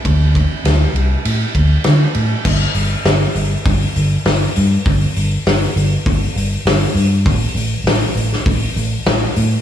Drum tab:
CC |----------------|x---------------|----------------|----------------|
RD |x-x-x-x-x-x-x-x-|----------------|----------------|----------------|
HH |----------------|--o-o-o-o-o-o-o-|o-o-o-o-o-o-o-o-|o-o-o-o-o-o-o-o-|
SD |----o-------o---|----o-------o---|----o-------o---|----o--o----o---|
BD |o-o-------o-----|o-------o-------|o-------o-------|o-------o-------|